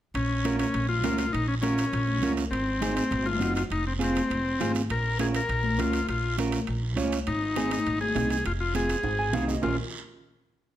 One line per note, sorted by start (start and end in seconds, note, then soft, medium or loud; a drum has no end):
0.14 0.62 A#1 medium
0.14 0.56 C#4 medium
0.14 high conga soft
0.14 high timbale medium
0.14 long guiro medium
0.45 0.65 C#4 medium
0.45 0.66 F4 medium
0.45 0.66 A#4 medium
0.45 high conga medium
0.45 high timbale medium
0.45 short guiro medium
0.59 0.87 C#4 medium
0.59 high conga medium
0.59 high timbale medium
0.59 short guiro medium
0.74 1.03 A#1 medium
0.74 high conga soft
0.74 high timbale medium
0.74 long guiro medium
0.89 1.18 F4 medium
0.89 high conga medium
1.03 1.27 C#2 medium
1.03 1.24 C#4 medium
1.03 1.25 F4 medium
1.03 1.25 A#4 medium
1.03 high conga medium
1.03 high timbale medium
1.03 low timbale medium
1.03 short guiro medium
1.18 1.32 F4 medium
1.18 high timbale medium
1.18 short guiro medium
1.33 1.81 A#1 medium
1.33 1.47 D#4 medium
1.33 high conga soft
1.33 high timbale medium
1.33 long guiro medium
1.48 1.55 C#4 medium
1.62 2.32 C#4 medium
1.62 1.84 C#4 medium
1.62 1.84 F4 medium
1.62 1.84 A#4 medium
1.62 high conga medium
1.62 high timbale medium
1.62 short guiro medium
1.78 high timbale medium
1.78 short guiro medium
1.92 2.21 A#1 loud
1.92 high conga soft
1.92 high timbale medium
1.92 long guiro medium
2.07 high conga medium
2.21 2.45 C#2 medium
2.21 2.43 C#4 medium
2.21 2.43 F4 medium
2.21 2.44 A#4 medium
2.21 high conga medium
2.21 high timbale medium
2.21 short guiro medium
2.37 high timbale medium
2.37 short guiro medium
2.51 2.99 G#1 medium
2.51 2.95 C4 medium
2.51 high conga soft
2.51 high timbale medium
2.51 long guiro medium
2.81 3.02 C4 medium
2.81 3.02 D#4 medium
2.81 3.02 G#4 medium
2.81 high conga medium
2.81 high timbale medium
2.81 short guiro medium
2.96 3.27 C4 medium
2.96 high conga medium
2.96 high timbale medium
2.96 short guiro medium
3.11 3.40 G#1 loud
3.11 high conga soft
3.11 high timbale medium
3.11 long guiro medium
3.26 3.54 F4 loud
3.26 high conga medium
3.39 3.64 F#1 medium
3.39 3.61 C4 medium
3.39 3.61 D#4 medium
3.39 3.62 F#4 medium
3.39 high conga medium
3.39 high timbale medium
3.39 short guiro medium
3.55 3.63 F4 medium
3.55 high timbale medium
3.55 short guiro medium
3.70 4.18 F1 medium
3.70 3.85 D#4 medium
3.70 high conga soft
3.70 high timbale medium
3.70 long guiro medium
3.87 3.93 C4 medium
3.99 4.20 C4 medium
3.99 4.20 F4 medium
3.99 4.21 G#4 medium
3.99 high conga medium
3.99 high timbale medium
3.99 short guiro medium
4.03 4.72 C4 medium
4.15 high conga medium
4.15 high timbale medium
4.15 short guiro medium
4.30 4.60 F1 medium
4.30 high conga soft
4.30 high timbale medium
4.30 long guiro medium
4.60 4.84 G#1 medium
4.60 4.81 C4 medium
4.60 4.81 F4 medium
4.60 4.81 G#4 medium
4.60 high conga medium
4.60 high timbale medium
4.60 low timbale medium
4.60 short guiro medium
4.75 high timbale medium
4.75 short guiro medium
4.89 5.37 A#1 medium
4.89 5.18 A#4 medium
4.89 high conga soft
4.89 high timbale medium
4.89 long guiro medium
5.19 5.40 C#4 medium
5.19 5.41 F4 medium
5.19 5.27 G#4 loud
5.19 5.41 A#4 medium
5.19 high conga medium
5.19 high timbale medium
5.19 short guiro medium
5.35 5.81 A#4 medium
5.35 high timbale medium
5.35 short guiro medium
5.49 5.78 A#1 medium
5.49 high conga soft
5.49 high timbale medium
5.49 long guiro medium
5.63 high conga medium
5.78 6.02 C#2 medium
5.78 5.99 C#4 medium
5.78 5.99 F4 medium
5.78 6.07 F4 medium
5.78 6.00 A#4 medium
5.78 high conga medium
5.78 high timbale medium
5.78 low timbale medium
5.78 short guiro medium
5.93 high timbale medium
5.93 short guiro medium
6.08 6.56 A#1 medium
6.08 6.37 F4 medium
6.08 high conga soft
6.08 high timbale medium
6.08 long guiro medium
6.38 6.59 C#4 medium
6.38 6.59 F4 medium
6.38 6.59 A#4 medium
6.38 high conga medium
6.38 high timbale medium
6.38 short guiro medium
6.52 high conga medium
6.52 high timbale medium
6.52 short guiro medium
6.67 6.96 A#1 medium
6.67 high conga soft
6.67 high timbale medium
6.67 long guiro medium
6.96 7.20 C#2 medium
6.96 7.17 C#4 medium
6.96 7.18 F4 medium
6.96 7.18 C#5 medium
6.96 high conga medium
6.96 high timbale medium
6.96 low timbale medium
6.96 short guiro medium
7.12 high timbale medium
7.12 short guiro medium
7.27 7.74 G#1 loud
7.27 7.71 D#4 medium
7.27 high conga soft
7.27 high timbale medium
7.27 long guiro medium
7.56 7.77 C4 medium
7.56 7.77 D#4 medium
7.56 7.77 G#4 medium
7.56 high conga medium
7.56 high timbale medium
7.56 short guiro medium
7.71 7.99 D#4 medium
7.71 high conga medium
7.71 high timbale medium
7.71 short guiro medium
7.85 8.16 G#1 medium
7.85 high conga soft
7.85 high timbale medium
7.85 long guiro medium
8.01 8.30 G#4 loud
8.01 high conga medium
8.15 8.39 C2 medium
8.15 8.36 C4 medium
8.15 8.36 D#4 medium
8.15 8.36 G#4 medium
8.15 high conga medium
8.15 high timbale medium
8.15 low timbale medium
8.15 short guiro medium
8.30 8.44 G#4 medium
8.30 high timbale medium
8.30 short guiro medium
8.45 8.92 F1 medium
8.45 8.52 F4 medium
8.45 high conga soft
8.45 high timbale medium
8.45 long guiro medium
8.60 8.74 F4 medium
8.74 8.95 C4 medium
8.74 8.96 F4 medium
8.74 8.96 G#4 medium
8.74 9.45 G#4 medium
8.74 high conga medium
8.74 high timbale medium
8.74 short guiro medium
8.89 high timbale medium
8.89 short guiro medium
9.03 9.33 G#1 loud
9.03 high conga soft
9.03 high timbale medium
9.03 long guiro medium
9.19 9.32 G#5 medium
9.33 9.57 C2 medium
9.33 9.54 C4 medium
9.33 9.54 D#4 medium
9.33 9.54 G#4 medium
9.33 9.47 F5 medium
9.33 high conga medium
9.33 low timbale medium
9.33 short guiro medium
9.48 9.62 D#5 medium
9.48 low timbale medium
9.48 short guiro medium
9.62 9.77 A#1 medium
9.62 9.76 C#4 medium
9.62 9.76 F4 medium
9.62 9.77 F4 medium
9.62 9.76 A#4 medium
9.62 low conga medium
9.62 low timbale medium
9.62 long guiro medium